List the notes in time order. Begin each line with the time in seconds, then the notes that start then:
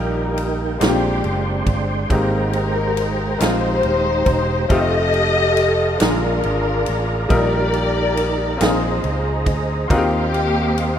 Already playing: A#1 A#2 G3 A#3 D#4 G4 A#4 G5
0.38 ride
0.78 A#1 A#2 G#3 A#3 C4 D4 F4 G4 D5 G5 C6, snare, clap, ride
0.89 G4
1.24 F#1, ride
1.66 G1, kick, ride
2.10 G#1 G#2 G#3 A#3 C4 D#4 G4 A#4 C5 A#5, kick, ride
2.14 D#4
2.53 ride
2.97 ride
3.38 A#1 G#3 A#3 C4 D#4 F4 G4 C5, snare, clap, ride
3.83 D#1, ride
4.26 E1, kick, ride
4.68 F1 A3 C4 D#4 F4 G4 A4 D#5 F5 A5, kick, ride
4.72 G4
5.14 ride
5.57 ride
5.99 A#1 D3 G#3 A#3 D4 F4 G#4 A#4 D5 F5 A#5, snare, clap, ride
6.03 F4
6.43 G#1, ride
6.86 A1, ride
7.29 A#1 A#2 G3 A#3 D#4 G4 A#4 D5, kick, ride
7.33 G4
7.73 ride
8.17 ride
8.57 A#2 A#3 C4 D4 F4 G#4 C5 D#5, ride
8.61 A#1 D#4 G#4 C5, snare, clap
9.04 C#2, ride
9.46 D2, kick, ride
9.88 D#2 D#3 A#3 C4 D#4 F4 F#4 G4 F5 C6, kick, ride
9.92 A#3 C4 G4
9.98 G4
10.34 ride
10.78 ride